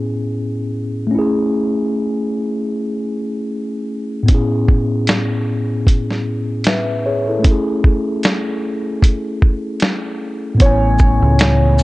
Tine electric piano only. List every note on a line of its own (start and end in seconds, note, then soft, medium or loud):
0.00 1.07 A2 medium
0.00 1.08 B3 medium
0.00 1.10 C#4 medium
0.00 1.11 E4 medium
0.00 1.12 G#4 medium
1.07 4.22 A3 medium
1.11 4.24 C#4 medium
1.11 4.26 E4 medium
1.19 4.28 G#4 medium
4.23 7.38 A2 medium
4.23 7.39 B3 medium
4.29 7.41 C#4 medium
4.29 6.63 E4 medium
4.34 6.65 G#4 medium
6.67 7.04 B4 medium
6.67 7.04 E5 medium
7.06 7.28 G#4 medium
7.06 7.27 C#5 medium
7.28 7.46 E4 soft
7.28 7.66 A4 medium
7.39 10.54 A3 medium
7.39 10.56 C#4 medium
7.47 10.58 E4 medium
7.51 10.60 G#4 medium
10.55 11.83 A2 medium
10.55 11.83 B3 medium
10.60 11.83 C#4 medium
10.60 11.83 E4 medium
10.66 11.83 G#5 medium